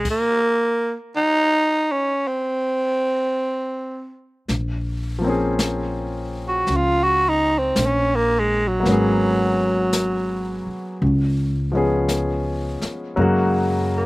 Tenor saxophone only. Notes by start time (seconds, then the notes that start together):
0.10 A#3
1.16 D#4
1.92 C#4
2.28 C4
6.48 F#4
6.77 F4
7.04 F#4
7.29 D#4
7.59 C4
7.86 C#4
8.16 A#3
8.39 G#3
8.68 F#3
13.97 A#3